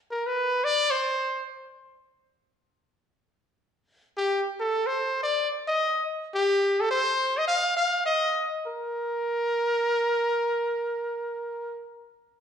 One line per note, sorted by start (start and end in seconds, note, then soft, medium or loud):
0.11 0.28 A#4 medium
0.26 0.66 B4 medium
0.64 0.92 D5 loud
0.91 1.45 C5 medium
4.17 4.41 G4 medium
4.60 4.88 A4 medium
4.87 5.22 C5 medium
5.23 5.49 D5 medium
5.68 6.03 D#5 medium
6.35 6.82 G4 medium
6.81 6.90 A4 medium
6.91 7.39 C5 medium
7.38 7.46 D#5 medium
7.47 7.73 F5 loud
7.77 8.02 F5 medium
8.05 8.50 D#5 medium
8.66 11.85 A#4 medium